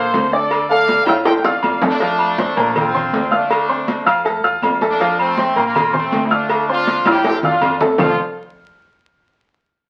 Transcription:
Already playing: upright bass A#1, grand piano A#3 C5 F5, trumpet section A4 C5
0.14 upright bass D2, cowbell, high conga, low timbale, low agogo
0.32 grand piano D4 D5 D6, trumpet section A4 D5
0.51 cowbell, high conga, low agogo, claves
0.68 grand piano A3 A4 A5, trumpet section D5 F5, high conga
0.88 cowbell, high conga, low timbale, low agogo
1.05 upright bass F2, grand piano F4 F5, trumpet section E5 G5, cowbell, high bongo, high timbale, low agogo, claves
1.09 grand piano F6
1.25 grand piano A3 A4 A5, trumpet section C5 G5, cowbell, high bongo, high conga, high timbale
1.37 trumpet section G5
1.43 upright bass E2, grand piano F4 F5 F6, trumpet section D5 F5, high bongo, high conga, low timbale
1.63 upright bass F2, cowbell, high conga, low timbale, low agogo, claves
1.82 grand piano A3 A4 A5, cowbell, low bongo, high conga, low timbale
1.89 trumpet section A3 D4
2.00 grand piano F3 F4 F5, cowbell, high conga, low agogo
2.19 high conga, low agogo, claves
2.38 grand piano C4 C5 C6, cowbell, high conga, low timbale
2.57 upright bass A#1, grand piano A#3 A#4 A#5, high conga, low agogo
2.76 trumpet section C4 F4, cowbell, high conga, low conga, low agogo, claves
2.94 grand piano C4 C5 C6, high conga, low conga
3.13 upright bass D2, cowbell, high conga, low timbale, low agogo
3.31 trumpet section A3 D4, grand piano F4 F5 F6, high conga
3.51 cowbell, high conga, low agogo, claves
3.69 grand piano C4 C5 C6, high conga
3.88 cowbell, high conga, low timbale, low agogo
4.06 upright bass F2, grand piano F4 F5 F6, cowbell, low agogo, claves
4.24 grand piano A3 A4 A5, cowbell, high conga
4.44 upright bass E2, grand piano F4 F5 F6, high conga
4.62 upright bass F2, cowbell, high conga, low timbale, low agogo, claves
4.81 grand piano A3 A4 A5, cowbell, high conga
4.89 trumpet section A#3 D4
5.00 grand piano F3 F4 F5, cowbell, high conga, low agogo
5.19 trumpet section A3 C4, high conga, low agogo, claves
5.37 grand piano C4 C5 C6, cowbell, high conga, low timbale
5.56 upright bass A#1, grand piano A#3 A#4 A#5, high conga, low agogo
5.64 trumpet section A#3 F4
5.75 cowbell, high conga, low conga, low agogo, claves
5.93 trumpet section A3 C4, grand piano C4 C5 C6, high conga, low conga
6.12 upright bass D2, cowbell, high conga, low timbale, low agogo
6.24 trumpet section E4
6.30 trumpet section A3 D4, grand piano F4 F5 F6, high conga
6.49 cowbell, high conga, low agogo, claves
6.69 grand piano C4 C5 C6, trumpet section D4 F4, high conga
6.87 cowbell, high conga, low timbale, low agogo
7.05 upright bass F2, grand piano F4 F5 F6, trumpet section G4, cowbell, high conga, high timbale, low agogo, claves
7.09 trumpet section E4
7.24 grand piano A3 A4 A5, trumpet section C4 G4, cowbell, high conga, high timbale
7.43 trumpet section D4 F4, grand piano F4 F5 F6, low conga
7.61 upright bass F2, cowbell, low conga, low timbale, low agogo, claves
7.81 grand piano A3 A4 A5, cowbell, low conga, low timbale
7.98 upright bass F1, grand piano F3 C4 F4 A4 C5 F5, trumpet section F4, low bongo, low conga, low timbale, claves

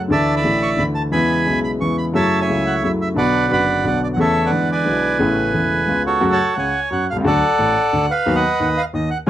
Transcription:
0.08 grand piano D2 D3 E3 A3, bandoneon D5 A5
0.12 grand piano E4, bandoneon E5
0.36 bandoneon D5 E5 B5
0.42 grand piano A1 A2 D3 E3 A3 E4
0.63 bandoneon C#6
0.76 grand piano D2 D3 E3 A3, bandoneon B5
0.80 grand piano E4
0.95 bandoneon A5
1.11 grand piano E2 C#3 E3 G#3 B3 E4, bandoneon G#5 B5
1.44 grand piano B1 B2 C#3 G#3 B3 E4
1.64 bandoneon B5
1.79 grand piano E2 C#3 E3 G#3 B3 E4, bandoneon C#6
1.98 bandoneon B5
2.12 grand piano F#2 C#3 F#3 A3, bandoneon C#5 E5 A5
2.17 grand piano E4
2.41 bandoneon C#5 E5 G#5
2.47 grand piano C#2 C#3 F#3 A3
2.51 grand piano E4
2.67 bandoneon F#5
2.82 grand piano F#2 C#3 F#3 A3 E4, bandoneon E5
3.01 bandoneon E5
3.14 grand piano B1 B2 D3 F#3 B3 F#4, bandoneon B4 D5 F#5
3.48 grand piano F#1 F#2 D3 F#3 B3
3.52 grand piano F#4, bandoneon D5 F#5 B5
3.82 grand piano B1 B2 D3 F#3 B3 F#4
3.87 bandoneon F#5
4.04 bandoneon D5
4.14 grand piano E2, bandoneon F#5
4.18 grand piano C#3 E3 A3 E4, bandoneon A4 C#5 E5
4.46 bandoneon B4 D5 F#5
4.50 grand piano E2 D3 E3 G#3 B3
4.54 grand piano E4
4.72 bandoneon B4 D5 G#5
4.84 grand piano B1 B2 D3 G#3 B3 E4
5.18 grand piano A1 A2 C#3 A3 B3 E4
5.52 grand piano E1 E2 C#3 A3 B3 E4
5.86 grand piano C#2 C#3 G#3 B3 F4
6.07 bandoneon F#4 A4 C#5
6.21 grand piano F#2 C#3 F#3 A3 F#4
6.32 bandoneon C#5 F#5 A5
6.56 grand piano C#2 C#3, bandoneon C#5 G#5
6.91 grand piano F#2 F#3, bandoneon F#5
7.10 grand piano B1, bandoneon F5
7.16 grand piano C2
7.20 grand piano C#2 D3
7.25 grand piano D2 F#3 A3 F#4, bandoneon A4 D5 F#5
7.59 grand piano A1 A2
7.93 grand piano D2 D3
8.11 bandoneon B4 F5
8.26 grand piano D#2 D#3 F#3 B3 F#4
8.35 bandoneon B4 D#5 F#5
8.60 grand piano D#2 D#3, bandoneon F#5
8.77 bandoneon F5
8.93 grand piano D#2 D#3, bandoneon D#5
9.10 bandoneon F#5
9.26 grand piano C#2 C#3 F3 G#3

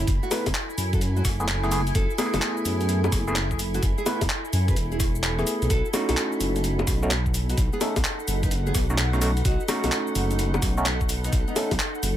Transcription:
Already playing: ambient pad E4 A4 G#5 B5
0.07 detuned saw bass F#1, kick, closed hi-hat, shaker
0.23 nylon-string guitar A3 F#4, shaker
0.31 tine electric piano A3 B3 E4 B4, open hi-hat, high bongo, shaker
0.46 detuned saw bass F#1, kick, closed hi-hat, high bongo, shaker
0.55 clap, closed hi-hat, shaker
0.70 shaker
0.78 detuned saw bass F#2, open hi-hat, shaker
0.93 nylon-string guitar F#4 A4, kick, closed hi-hat, shaker
1.01 closed hi-hat, shaker
1.17 nylon-string guitar A3 F#4, shaker
1.25 detuned saw bass F#1, kick, cross-stick, open hi-hat, shaker
1.40 tine electric piano A3 B3 E4 G#4, shaker
1.48 clap, closed hi-hat, shaker
1.63 tine electric piano A3 B3 E4 G#4, cross-stick, shaker
1.71 tine electric piano A3 B3 E4 G#4, open hi-hat, shaker
1.87 closed hi-hat, shaker
1.95 detuned saw bass F#1, nylon-string guitar F#4 A4, kick, closed hi-hat, shaker
2.10 shaker
2.18 tine electric piano A3 B3 E4 G#4, open hi-hat, high bongo, shaker
2.34 detuned saw bass F#1, nylon-string guitar F#4 A4, closed hi-hat, high bongo, shaker
2.42 clap, closed hi-hat, shaker
2.57 shaker
2.65 detuned saw bass F#2, open hi-hat, shaker
2.81 closed hi-hat, shaker
2.89 closed hi-hat, shaker
3.04 high bongo, shaker
3.12 detuned saw bass F#1, kick, cross-stick, open hi-hat, shaker
3.28 tine electric piano A3 B3 E4 G#4, shaker
3.36 clap, closed hi-hat, shaker
3.51 kick, shaker
3.59 open hi-hat, shaker
3.74 nylon-string guitar A3 F#4, closed hi-hat, shaker
3.83 detuned saw bass F#1, kick, closed hi-hat, shaker
3.98 nylon-string guitar E4 G#4, shaker
4.06 tine electric piano A3 B3 E4 B4, open hi-hat, high bongo, shaker
4.21 detuned saw bass F#1, kick, closed hi-hat, high bongo, shaker
4.30 clap, closed hi-hat, shaker
4.45 shaker
4.53 detuned saw bass F#2, open hi-hat, shaker
4.68 nylon-string guitar G#4 B4, kick, closed hi-hat, shaker
4.76 detuned saw bass E1, closed hi-hat, shaker
4.92 nylon-string guitar E4 G#4, shaker
5.00 kick, cross-stick, open hi-hat, shaker
5.15 shaker
5.23 clap, closed hi-hat, shaker
5.39 tine electric piano A3 B3 E4 G#4, cross-stick, shaker
5.47 open hi-hat, shaker
5.62 detuned saw bass B1, closed hi-hat, shaker
5.70 detuned saw bass B1, ambient pad D#4, nylon-string guitar F#4 A4, kick, closed hi-hat, shaker
5.85 shaker
5.94 tine electric piano A3 C#4 D#4 F#4, open hi-hat, high bongo, shaker
6.09 detuned saw bass B1, nylon-string guitar F#4 A4, ambient pad F#5, closed hi-hat, high bongo, shaker
6.17 clap, closed hi-hat, shaker
6.32 shaker
6.40 detuned saw bass F#1, open hi-hat, shaker
6.56 closed hi-hat, shaker
6.64 closed hi-hat, shaker
6.79 high bongo, shaker
6.87 detuned saw bass B1, kick, cross-stick, open hi-hat, shaker
7.03 tine electric piano A3 C#4 D#4 F#4, shaker
7.11 clap, closed hi-hat, shaker
7.26 kick, shaker
7.34 open hi-hat, shaker
7.49 nylon-string guitar D#4 F#4, closed hi-hat, shaker
7.58 detuned saw bass B1, kick, closed hi-hat, shaker
7.73 nylon-string guitar B3 G#4, shaker
7.81 tine electric piano A3 C#4 D#4 A4, open hi-hat, high bongo, shaker
7.96 detuned saw bass B1, kick, closed hi-hat, high bongo, shaker
8.04 clap, closed hi-hat, shaker
8.20 shaker
8.28 detuned saw bass F#1, open hi-hat, shaker
8.43 nylon-string guitar D#4 B4, kick, closed hi-hat, shaker
8.51 closed hi-hat, shaker
8.67 nylon-string guitar B3 G#4, shaker
8.75 detuned saw bass B1, kick, cross-stick, open hi-hat, shaker
8.90 tine electric piano A3 C#4 D#4 F#4, shaker
8.98 clap, closed hi-hat, shaker
9.13 tine electric piano A3 C#4 D#4 F#4, cross-stick, shaker
9.21 tine electric piano A3 C#4 D#4 F#4, open hi-hat, shaker
9.37 closed hi-hat, shaker
9.45 detuned saw bass B1, nylon-string guitar D#4 F#4, kick, closed hi-hat, shaker
9.60 shaker
9.68 tine electric piano A3 C#4 D#4 F#4, open hi-hat, high bongo, shaker
9.84 detuned saw bass B1, nylon-string guitar D#4 F#4, closed hi-hat, high bongo, shaker
9.92 clap, closed hi-hat, shaker
10.07 shaker
10.15 detuned saw bass F#1, open hi-hat, shaker
10.31 closed hi-hat, shaker
10.39 closed hi-hat, shaker
10.54 high bongo, shaker
10.62 detuned saw bass B1, kick, cross-stick, open hi-hat, shaker
10.78 tine electric piano A3 C#4 D#4 F#4, shaker
10.86 clap, closed hi-hat, shaker
11.01 kick, shaker
11.09 open hi-hat, shaker
11.24 nylon-string guitar B3 D#4, closed hi-hat, shaker
11.33 detuned saw bass B1, kick, closed hi-hat, shaker
11.48 nylon-string guitar B3 D#4, shaker
11.56 tine electric piano A3 C#4 D#4 A4, open hi-hat, high bongo, shaker
11.71 detuned saw bass B1, kick, closed hi-hat, high bongo, shaker
11.79 clap, closed hi-hat, shaker
11.95 shaker
12.03 detuned saw bass F#1, open hi-hat, shaker

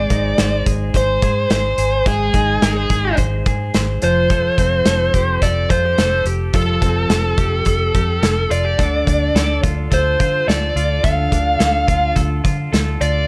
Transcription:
Already playing: clean electric guitar G#3 C4 D#4 C5, lead electric guitar D5
0.10 fingered electric bass G#1, clean electric guitar D#4, kick, closed hi-hat
0.38 fingered electric bass G#1, clean electric guitar C5, snare, closed hi-hat
0.66 fingered electric bass G#1, clean electric guitar G#4, kick, closed hi-hat
0.94 fingered electric bass G#1, clean electric guitar C5, lead electric guitar C5, kick, closed hi-hat
1.22 fingered electric bass G#2, clean electric guitar G#4, kick, closed hi-hat
1.50 fingered electric bass G#1, clean electric guitar C5, lead electric guitar C5, snare, closed hi-hat
1.78 fingered electric bass G#1, clean electric guitar G#4, closed hi-hat
2.06 fingered electric bass G#1, clean electric guitar G#3 C5, lead electric guitar G#4, kick, closed hi-hat
2.33 fingered electric bass G#1, clean electric guitar D#4, kick, closed hi-hat
2.62 fingered electric bass G#1, clean electric guitar A#4, snare, closed hi-hat
2.76 clean electric guitar C5
2.90 fingered electric bass G#1, clean electric guitar G#4, kick, closed hi-hat
3.17 fingered electric bass G#1, clean electric guitar C5, kick, closed hi-hat
3.46 fingered electric bass G#2, clean electric guitar G#4, kick, closed hi-hat
3.74 fingered electric bass G#1, clean electric guitar C5, snare, closed hi-hat
4.02 fingered electric bass F1, clean electric guitar F3, lead electric guitar C5, closed hi-hat
4.30 clean electric guitar F3 A4, kick, closed hi-hat
4.58 fingered electric bass F1, clean electric guitar C4, kick, closed hi-hat
4.85 fingered electric bass F1, clean electric guitar A4, snare, closed hi-hat
5.14 fingered electric bass F1, clean electric guitar G4, kick, closed hi-hat
5.42 fingered electric bass F1, clean electric guitar A4, lead electric guitar D5, kick, closed hi-hat
5.70 fingered electric bass F2, clean electric guitar F4, lead electric guitar C5, kick, closed hi-hat
5.85 clean electric guitar G4
5.98 fingered electric bass F1, clean electric guitar A4, snare, closed hi-hat
6.25 fingered electric bass F1, clean electric guitar G4, closed hi-hat
6.53 fingered electric bass F1, clean electric guitar F3 A4, lead electric guitar A4, kick, closed hi-hat
6.82 fingered electric bass F1, clean electric guitar C4, kick, closed hi-hat
7.10 fingered electric bass F1, clean electric guitar A4, snare, closed hi-hat
7.38 fingered electric bass F1, clean electric guitar G4, kick, closed hi-hat
7.65 fingered electric bass F1, clean electric guitar A4, kick, closed hi-hat
7.95 fingered electric bass F2, clean electric guitar G4, kick, closed hi-hat
8.22 fingered electric bass F1, clean electric guitar A4, snare, closed hi-hat
8.50 fingered electric bass F1, clean electric guitar F4, lead electric guitar D5, closed hi-hat
8.65 clean electric guitar G4
8.78 fingered electric bass D2, clean electric guitar D3 A4, kick, closed hi-hat
9.06 fingered electric bass D2, clean electric guitar D4, kick, closed hi-hat
9.35 fingered electric bass D2, clean electric guitar A4, snare, closed hi-hat
9.63 fingered electric bass D2, clean electric guitar F4, kick, closed hi-hat
9.91 fingered electric bass D2, clean electric guitar A4, lead electric guitar C5, kick, closed hi-hat
10.20 fingered electric bass D3, clean electric guitar F4, kick, closed hi-hat
10.48 fingered electric bass D2, clean electric guitar A4, lead electric guitar D5, snare, closed hi-hat
10.76 fingered electric bass D2, clean electric guitar F4, closed hi-hat
11.04 fingered electric bass D2, clean electric guitar D3 A4, lead electric guitar F5, kick, closed hi-hat
11.32 fingered electric bass D2, clean electric guitar D4, kick, closed hi-hat
11.59 fingered electric bass D2, clean electric guitar A4, snare, closed hi-hat
11.88 fingered electric bass D2, clean electric guitar F4, kick, closed hi-hat
12.16 fingered electric bass D2, clean electric guitar A4, kick, closed hi-hat
12.44 fingered electric bass D3, clean electric guitar F4, kick, closed hi-hat
12.72 fingered electric bass D2, clean electric guitar A4, snare, closed hi-hat
13.01 fingered electric bass D2, clean electric guitar F4, lead electric guitar D5, closed hi-hat

